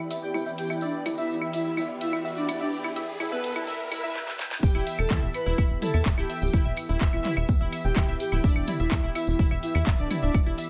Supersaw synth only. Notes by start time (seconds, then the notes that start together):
0.23 G5
0.58 G5
0.82 D5
1.18 E5
1.53 E5
2.01 E5
2.37 D5
2.61 D5
3.32 B4
4.03 E5
4.63 G5
4.99 A5
5.34 B5
5.82 A5
6.18 G5
6.42 G5
7.13 E5
7.84 G5
8.20 G5
8.44 D5
8.80 E5
9.15 E5
9.63 E5
9.99 D5
10.22 D5